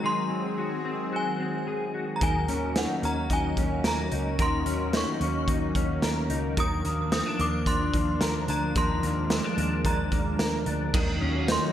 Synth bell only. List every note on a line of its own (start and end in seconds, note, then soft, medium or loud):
0.06 1.17 C6 medium
1.16 1.92 G#5 medium
2.16 2.22 A#5 medium
2.23 2.78 G#5 medium
2.78 3.05 F#5 medium
3.05 3.32 A#5 medium
3.33 3.88 G#5 medium
3.88 4.42 A#5 medium
4.42 4.97 C6 medium
4.97 5.46 C#6 medium
6.60 7.11 D#6 medium
7.13 7.38 D#6 medium
7.41 7.68 D6 medium
7.67 8.51 C6 medium
8.50 8.77 A#5 medium
8.78 9.89 C6 medium
9.86 10.63 A#5 medium
11.52 11.72 C6 medium